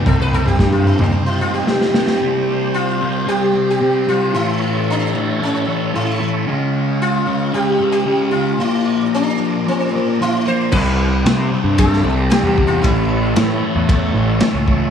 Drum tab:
CC |----------------|----------------|----------------|----------------|
RD |----------------|----------------|----------------|----------------|
SD |----o-------oooo|----------------|----------------|----------------|
T2 |--o----o--------|----------------|----------------|----------------|
FT |oo-o-o-o--------|----------------|----------------|----------------|
BD |o---o-----------|----------------|----------------|----------------|

CC |----------------|x---------------|----------------|
RD |----------------|----b---b---b---|b---b---b---b---|
SD |----------------|----o----o--o---|----o-------o---|
T2 |----------------|----------------|----------------|
FT |----------------|----------------|----------------|
BD |----------------|o-------o-----o-|o-------o-----o-|